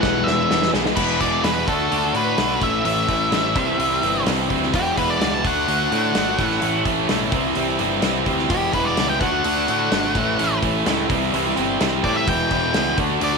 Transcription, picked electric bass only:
0, 0, Header, 1, 2, 480
1, 0, Start_track
1, 0, Tempo, 470588
1, 990, Time_signature, 4, 2, 24, 8
1, 13647, End_track
2, 0, Start_track
2, 0, Title_t, "Picked electric bass"
2, 0, Program_c, 0, 34
2, 32, Note_on_c, 0, 35, 87
2, 232, Note_off_c, 0, 35, 0
2, 264, Note_on_c, 0, 28, 92
2, 467, Note_off_c, 0, 28, 0
2, 513, Note_on_c, 0, 28, 88
2, 713, Note_off_c, 0, 28, 0
2, 745, Note_on_c, 0, 35, 90
2, 948, Note_off_c, 0, 35, 0
2, 991, Note_on_c, 0, 28, 77
2, 1192, Note_off_c, 0, 28, 0
2, 1230, Note_on_c, 0, 28, 78
2, 1432, Note_off_c, 0, 28, 0
2, 1467, Note_on_c, 0, 40, 72
2, 1670, Note_off_c, 0, 40, 0
2, 1709, Note_on_c, 0, 38, 80
2, 1911, Note_off_c, 0, 38, 0
2, 1955, Note_on_c, 0, 38, 81
2, 2155, Note_off_c, 0, 38, 0
2, 2185, Note_on_c, 0, 45, 78
2, 2389, Note_off_c, 0, 45, 0
2, 2425, Note_on_c, 0, 35, 87
2, 2630, Note_off_c, 0, 35, 0
2, 2665, Note_on_c, 0, 33, 91
2, 2870, Note_off_c, 0, 33, 0
2, 2908, Note_on_c, 0, 33, 78
2, 3112, Note_off_c, 0, 33, 0
2, 3145, Note_on_c, 0, 33, 79
2, 3350, Note_off_c, 0, 33, 0
2, 3384, Note_on_c, 0, 33, 72
2, 3629, Note_off_c, 0, 33, 0
2, 3629, Note_on_c, 0, 36, 91
2, 3833, Note_off_c, 0, 36, 0
2, 3859, Note_on_c, 0, 36, 85
2, 4067, Note_off_c, 0, 36, 0
2, 4107, Note_on_c, 0, 31, 80
2, 4312, Note_off_c, 0, 31, 0
2, 4349, Note_on_c, 0, 36, 90
2, 4554, Note_off_c, 0, 36, 0
2, 4594, Note_on_c, 0, 38, 85
2, 4797, Note_off_c, 0, 38, 0
2, 4831, Note_on_c, 0, 28, 87
2, 5035, Note_off_c, 0, 28, 0
2, 5075, Note_on_c, 0, 28, 79
2, 5277, Note_off_c, 0, 28, 0
2, 5315, Note_on_c, 0, 37, 83
2, 5553, Note_off_c, 0, 37, 0
2, 5553, Note_on_c, 0, 38, 88
2, 5757, Note_off_c, 0, 38, 0
2, 5795, Note_on_c, 0, 38, 78
2, 5998, Note_off_c, 0, 38, 0
2, 6037, Note_on_c, 0, 45, 89
2, 6239, Note_off_c, 0, 45, 0
2, 6274, Note_on_c, 0, 32, 75
2, 6478, Note_off_c, 0, 32, 0
2, 6518, Note_on_c, 0, 33, 91
2, 6720, Note_off_c, 0, 33, 0
2, 6747, Note_on_c, 0, 33, 82
2, 6954, Note_off_c, 0, 33, 0
2, 6989, Note_on_c, 0, 33, 75
2, 7195, Note_off_c, 0, 33, 0
2, 7243, Note_on_c, 0, 35, 70
2, 7443, Note_off_c, 0, 35, 0
2, 7466, Note_on_c, 0, 36, 90
2, 7673, Note_off_c, 0, 36, 0
2, 7707, Note_on_c, 0, 36, 89
2, 7914, Note_off_c, 0, 36, 0
2, 7951, Note_on_c, 0, 31, 81
2, 8156, Note_off_c, 0, 31, 0
2, 8189, Note_on_c, 0, 36, 76
2, 8395, Note_off_c, 0, 36, 0
2, 8429, Note_on_c, 0, 38, 89
2, 8635, Note_off_c, 0, 38, 0
2, 8668, Note_on_c, 0, 28, 79
2, 8874, Note_off_c, 0, 28, 0
2, 8913, Note_on_c, 0, 28, 86
2, 9117, Note_off_c, 0, 28, 0
2, 9149, Note_on_c, 0, 37, 79
2, 9354, Note_off_c, 0, 37, 0
2, 9388, Note_on_c, 0, 38, 87
2, 9594, Note_off_c, 0, 38, 0
2, 9635, Note_on_c, 0, 38, 86
2, 9838, Note_off_c, 0, 38, 0
2, 9875, Note_on_c, 0, 45, 82
2, 10077, Note_off_c, 0, 45, 0
2, 10116, Note_on_c, 0, 32, 81
2, 10318, Note_off_c, 0, 32, 0
2, 10355, Note_on_c, 0, 33, 91
2, 10557, Note_off_c, 0, 33, 0
2, 10600, Note_on_c, 0, 33, 80
2, 10800, Note_off_c, 0, 33, 0
2, 10835, Note_on_c, 0, 33, 78
2, 11037, Note_off_c, 0, 33, 0
2, 11070, Note_on_c, 0, 37, 83
2, 11273, Note_off_c, 0, 37, 0
2, 11320, Note_on_c, 0, 36, 93
2, 11519, Note_off_c, 0, 36, 0
2, 11565, Note_on_c, 0, 36, 85
2, 11762, Note_off_c, 0, 36, 0
2, 11807, Note_on_c, 0, 31, 91
2, 12003, Note_off_c, 0, 31, 0
2, 12049, Note_on_c, 0, 36, 90
2, 12244, Note_off_c, 0, 36, 0
2, 12282, Note_on_c, 0, 45, 93
2, 12480, Note_off_c, 0, 45, 0
2, 12520, Note_on_c, 0, 28, 89
2, 12718, Note_off_c, 0, 28, 0
2, 12763, Note_on_c, 0, 28, 79
2, 12959, Note_off_c, 0, 28, 0
2, 12995, Note_on_c, 0, 37, 80
2, 13195, Note_off_c, 0, 37, 0
2, 13239, Note_on_c, 0, 38, 99
2, 13437, Note_off_c, 0, 38, 0
2, 13471, Note_on_c, 0, 38, 87
2, 13647, Note_off_c, 0, 38, 0
2, 13647, End_track
0, 0, End_of_file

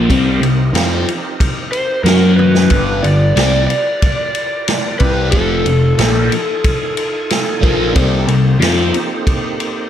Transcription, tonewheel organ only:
0, 0, Header, 1, 2, 480
1, 0, Start_track
1, 0, Tempo, 655738
1, 62, Time_signature, 4, 2, 24, 8
1, 7243, End_track
2, 0, Start_track
2, 0, Title_t, "Tonewheel organ"
2, 0, Program_c, 0, 16
2, 65, Note_on_c, 0, 70, 64
2, 66, Note_on_c, 0, 63, 68
2, 66, Note_on_c, 0, 67, 67
2, 68, Note_on_c, 0, 60, 68
2, 1487, Note_off_c, 0, 70, 0
2, 1488, Note_off_c, 0, 63, 0
2, 1488, Note_off_c, 0, 67, 0
2, 1489, Note_off_c, 0, 60, 0
2, 1494, Note_on_c, 0, 61, 72
2, 1496, Note_on_c, 0, 54, 70
2, 1497, Note_on_c, 0, 66, 65
2, 1500, Note_on_c, 0, 73, 72
2, 1972, Note_off_c, 0, 61, 0
2, 1973, Note_off_c, 0, 54, 0
2, 1974, Note_off_c, 0, 66, 0
2, 1975, Note_off_c, 0, 73, 0
2, 1983, Note_on_c, 0, 82, 65
2, 1988, Note_on_c, 0, 67, 63
2, 1989, Note_on_c, 0, 65, 65
2, 1990, Note_on_c, 0, 71, 67
2, 3882, Note_off_c, 0, 82, 0
2, 3884, Note_off_c, 0, 67, 0
2, 3885, Note_off_c, 0, 65, 0
2, 3885, Note_off_c, 0, 71, 0
2, 3903, Note_on_c, 0, 69, 70
2, 3906, Note_on_c, 0, 65, 71
2, 3907, Note_on_c, 0, 63, 69
2, 3908, Note_on_c, 0, 80, 68
2, 5803, Note_off_c, 0, 69, 0
2, 5804, Note_off_c, 0, 65, 0
2, 5805, Note_off_c, 0, 63, 0
2, 5805, Note_off_c, 0, 80, 0
2, 5823, Note_on_c, 0, 60, 70
2, 5825, Note_on_c, 0, 67, 66
2, 5826, Note_on_c, 0, 58, 68
2, 5828, Note_on_c, 0, 63, 70
2, 7243, Note_off_c, 0, 58, 0
2, 7243, Note_off_c, 0, 60, 0
2, 7243, Note_off_c, 0, 63, 0
2, 7243, Note_off_c, 0, 67, 0
2, 7243, End_track
0, 0, End_of_file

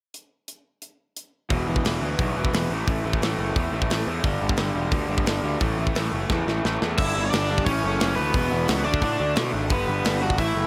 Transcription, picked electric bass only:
0, 0, Header, 1, 2, 480
1, 0, Start_track
1, 0, Tempo, 341491
1, 197, Time_signature, 4, 2, 24, 8
1, 14995, End_track
2, 0, Start_track
2, 0, Title_t, "Picked electric bass"
2, 0, Program_c, 0, 34
2, 2115, Note_on_c, 0, 28, 85
2, 2287, Note_off_c, 0, 28, 0
2, 2355, Note_on_c, 0, 28, 76
2, 2528, Note_off_c, 0, 28, 0
2, 2595, Note_on_c, 0, 28, 84
2, 2768, Note_off_c, 0, 28, 0
2, 2825, Note_on_c, 0, 38, 84
2, 3002, Note_off_c, 0, 38, 0
2, 3079, Note_on_c, 0, 35, 82
2, 3251, Note_off_c, 0, 35, 0
2, 3330, Note_on_c, 0, 28, 85
2, 3499, Note_off_c, 0, 28, 0
2, 3555, Note_on_c, 0, 28, 87
2, 3729, Note_off_c, 0, 28, 0
2, 3800, Note_on_c, 0, 33, 77
2, 3973, Note_off_c, 0, 33, 0
2, 4040, Note_on_c, 0, 33, 83
2, 4212, Note_off_c, 0, 33, 0
2, 4286, Note_on_c, 0, 33, 82
2, 4456, Note_off_c, 0, 33, 0
2, 4525, Note_on_c, 0, 33, 90
2, 4696, Note_off_c, 0, 33, 0
2, 4762, Note_on_c, 0, 30, 80
2, 4935, Note_off_c, 0, 30, 0
2, 4997, Note_on_c, 0, 40, 89
2, 5171, Note_off_c, 0, 40, 0
2, 5241, Note_on_c, 0, 33, 80
2, 5414, Note_off_c, 0, 33, 0
2, 5480, Note_on_c, 0, 33, 89
2, 5654, Note_off_c, 0, 33, 0
2, 5722, Note_on_c, 0, 40, 78
2, 5895, Note_off_c, 0, 40, 0
2, 5959, Note_on_c, 0, 31, 88
2, 6134, Note_off_c, 0, 31, 0
2, 6213, Note_on_c, 0, 31, 89
2, 6383, Note_off_c, 0, 31, 0
2, 6449, Note_on_c, 0, 31, 92
2, 6620, Note_off_c, 0, 31, 0
2, 6684, Note_on_c, 0, 28, 78
2, 6857, Note_off_c, 0, 28, 0
2, 6909, Note_on_c, 0, 38, 84
2, 7088, Note_off_c, 0, 38, 0
2, 7156, Note_on_c, 0, 31, 83
2, 7332, Note_off_c, 0, 31, 0
2, 7384, Note_on_c, 0, 31, 93
2, 7565, Note_off_c, 0, 31, 0
2, 7631, Note_on_c, 0, 38, 77
2, 7809, Note_off_c, 0, 38, 0
2, 7889, Note_on_c, 0, 33, 90
2, 8061, Note_off_c, 0, 33, 0
2, 8118, Note_on_c, 0, 33, 79
2, 8294, Note_off_c, 0, 33, 0
2, 8362, Note_on_c, 0, 33, 91
2, 8537, Note_off_c, 0, 33, 0
2, 8610, Note_on_c, 0, 30, 80
2, 8781, Note_off_c, 0, 30, 0
2, 8858, Note_on_c, 0, 40, 88
2, 9027, Note_off_c, 0, 40, 0
2, 9100, Note_on_c, 0, 33, 80
2, 9268, Note_off_c, 0, 33, 0
2, 9349, Note_on_c, 0, 33, 91
2, 9514, Note_off_c, 0, 33, 0
2, 9594, Note_on_c, 0, 40, 79
2, 9757, Note_off_c, 0, 40, 0
2, 9815, Note_on_c, 0, 31, 91
2, 10005, Note_off_c, 0, 31, 0
2, 10070, Note_on_c, 0, 31, 88
2, 10254, Note_off_c, 0, 31, 0
2, 10309, Note_on_c, 0, 31, 87
2, 10682, Note_off_c, 0, 31, 0
2, 10770, Note_on_c, 0, 33, 96
2, 10961, Note_off_c, 0, 33, 0
2, 11026, Note_on_c, 0, 30, 90
2, 11211, Note_off_c, 0, 30, 0
2, 11269, Note_on_c, 0, 30, 92
2, 11452, Note_off_c, 0, 30, 0
2, 11497, Note_on_c, 0, 38, 77
2, 11684, Note_off_c, 0, 38, 0
2, 11724, Note_on_c, 0, 28, 97
2, 11917, Note_off_c, 0, 28, 0
2, 11978, Note_on_c, 0, 28, 92
2, 12164, Note_off_c, 0, 28, 0
2, 12217, Note_on_c, 0, 37, 93
2, 12403, Note_off_c, 0, 37, 0
2, 12457, Note_on_c, 0, 38, 87
2, 12643, Note_off_c, 0, 38, 0
2, 12673, Note_on_c, 0, 45, 92
2, 12868, Note_off_c, 0, 45, 0
2, 12933, Note_on_c, 0, 38, 89
2, 13120, Note_off_c, 0, 38, 0
2, 13174, Note_on_c, 0, 47, 89
2, 13360, Note_off_c, 0, 47, 0
2, 13403, Note_on_c, 0, 32, 82
2, 13641, Note_off_c, 0, 32, 0
2, 13641, Note_on_c, 0, 31, 91
2, 13832, Note_off_c, 0, 31, 0
2, 13884, Note_on_c, 0, 31, 89
2, 14073, Note_off_c, 0, 31, 0
2, 14116, Note_on_c, 0, 31, 94
2, 14598, Note_off_c, 0, 31, 0
2, 14598, Note_on_c, 0, 33, 89
2, 14788, Note_off_c, 0, 33, 0
2, 14833, Note_on_c, 0, 30, 84
2, 14995, Note_off_c, 0, 30, 0
2, 14995, End_track
0, 0, End_of_file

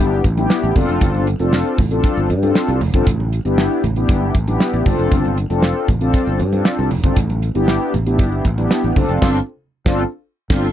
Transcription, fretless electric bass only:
0, 0, Header, 1, 2, 480
1, 0, Start_track
1, 0, Tempo, 512821
1, 948, Time_signature, 4, 2, 24, 8
1, 10037, End_track
2, 0, Start_track
2, 0, Title_t, "Fretless electric bass"
2, 0, Program_c, 0, 35
2, 0, Note_on_c, 0, 31, 96
2, 189, Note_off_c, 0, 31, 0
2, 227, Note_on_c, 0, 33, 90
2, 428, Note_off_c, 0, 33, 0
2, 593, Note_on_c, 0, 33, 95
2, 691, Note_off_c, 0, 33, 0
2, 710, Note_on_c, 0, 31, 108
2, 809, Note_off_c, 0, 31, 0
2, 834, Note_on_c, 0, 29, 85
2, 932, Note_off_c, 0, 29, 0
2, 950, Note_on_c, 0, 31, 106
2, 1250, Note_off_c, 0, 31, 0
2, 1311, Note_on_c, 0, 29, 85
2, 1510, Note_off_c, 0, 29, 0
2, 1671, Note_on_c, 0, 33, 91
2, 1870, Note_off_c, 0, 33, 0
2, 2032, Note_on_c, 0, 31, 82
2, 2152, Note_on_c, 0, 43, 100
2, 2166, Note_off_c, 0, 31, 0
2, 2351, Note_off_c, 0, 43, 0
2, 2510, Note_on_c, 0, 36, 90
2, 2610, Note_off_c, 0, 36, 0
2, 2630, Note_on_c, 0, 29, 86
2, 2730, Note_off_c, 0, 29, 0
2, 2751, Note_on_c, 0, 31, 84
2, 2850, Note_off_c, 0, 31, 0
2, 2871, Note_on_c, 0, 33, 110
2, 3171, Note_off_c, 0, 33, 0
2, 3230, Note_on_c, 0, 31, 77
2, 3430, Note_off_c, 0, 31, 0
2, 3590, Note_on_c, 0, 33, 86
2, 3790, Note_off_c, 0, 33, 0
2, 3828, Note_on_c, 0, 31, 96
2, 4029, Note_off_c, 0, 31, 0
2, 4070, Note_on_c, 0, 33, 89
2, 4270, Note_off_c, 0, 33, 0
2, 4430, Note_on_c, 0, 33, 85
2, 4529, Note_off_c, 0, 33, 0
2, 4548, Note_on_c, 0, 31, 105
2, 4648, Note_off_c, 0, 31, 0
2, 4670, Note_on_c, 0, 29, 89
2, 4769, Note_off_c, 0, 29, 0
2, 4789, Note_on_c, 0, 31, 107
2, 5090, Note_off_c, 0, 31, 0
2, 5149, Note_on_c, 0, 29, 85
2, 5349, Note_off_c, 0, 29, 0
2, 5507, Note_on_c, 0, 33, 93
2, 5708, Note_off_c, 0, 33, 0
2, 5868, Note_on_c, 0, 31, 83
2, 5988, Note_on_c, 0, 43, 100
2, 6002, Note_off_c, 0, 31, 0
2, 6189, Note_off_c, 0, 43, 0
2, 6352, Note_on_c, 0, 36, 89
2, 6451, Note_off_c, 0, 36, 0
2, 6471, Note_on_c, 0, 29, 83
2, 6570, Note_off_c, 0, 29, 0
2, 6586, Note_on_c, 0, 31, 89
2, 6687, Note_off_c, 0, 31, 0
2, 6707, Note_on_c, 0, 33, 115
2, 7008, Note_off_c, 0, 33, 0
2, 7069, Note_on_c, 0, 31, 83
2, 7269, Note_off_c, 0, 31, 0
2, 7431, Note_on_c, 0, 33, 87
2, 7665, Note_off_c, 0, 33, 0
2, 7665, Note_on_c, 0, 31, 94
2, 7867, Note_off_c, 0, 31, 0
2, 7908, Note_on_c, 0, 33, 93
2, 8109, Note_off_c, 0, 33, 0
2, 8273, Note_on_c, 0, 33, 86
2, 8371, Note_off_c, 0, 33, 0
2, 8388, Note_on_c, 0, 31, 103
2, 8488, Note_off_c, 0, 31, 0
2, 8508, Note_on_c, 0, 29, 94
2, 8608, Note_off_c, 0, 29, 0
2, 8630, Note_on_c, 0, 31, 109
2, 8793, Note_off_c, 0, 31, 0
2, 9229, Note_on_c, 0, 31, 100
2, 9392, Note_off_c, 0, 31, 0
2, 9829, Note_on_c, 0, 31, 101
2, 9992, Note_off_c, 0, 31, 0
2, 10037, End_track
0, 0, End_of_file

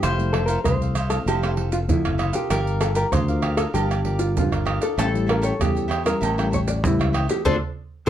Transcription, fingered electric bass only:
0, 0, Header, 1, 2, 480
1, 0, Start_track
1, 0, Tempo, 617920
1, 30, Time_signature, 4, 2, 24, 8
1, 6288, End_track
2, 0, Start_track
2, 0, Title_t, "Fingered electric bass"
2, 0, Program_c, 0, 33
2, 26, Note_on_c, 0, 29, 108
2, 436, Note_off_c, 0, 29, 0
2, 501, Note_on_c, 0, 36, 80
2, 914, Note_off_c, 0, 36, 0
2, 979, Note_on_c, 0, 29, 101
2, 1464, Note_on_c, 0, 41, 93
2, 1476, Note_off_c, 0, 29, 0
2, 1569, Note_off_c, 0, 41, 0
2, 1588, Note_on_c, 0, 30, 84
2, 1794, Note_off_c, 0, 30, 0
2, 1945, Note_on_c, 0, 31, 120
2, 2356, Note_off_c, 0, 31, 0
2, 2423, Note_on_c, 0, 38, 93
2, 2835, Note_off_c, 0, 38, 0
2, 2905, Note_on_c, 0, 31, 104
2, 3393, Note_on_c, 0, 43, 105
2, 3405, Note_off_c, 0, 31, 0
2, 3495, Note_off_c, 0, 43, 0
2, 3510, Note_on_c, 0, 31, 78
2, 3715, Note_off_c, 0, 31, 0
2, 3867, Note_on_c, 0, 33, 118
2, 4277, Note_off_c, 0, 33, 0
2, 4346, Note_on_c, 0, 40, 84
2, 4757, Note_off_c, 0, 40, 0
2, 4830, Note_on_c, 0, 33, 106
2, 5311, Note_off_c, 0, 33, 0
2, 5311, Note_on_c, 0, 45, 103
2, 5414, Note_off_c, 0, 45, 0
2, 5434, Note_on_c, 0, 37, 82
2, 5638, Note_off_c, 0, 37, 0
2, 5790, Note_on_c, 0, 38, 106
2, 5881, Note_off_c, 0, 38, 0
2, 6288, End_track
0, 0, End_of_file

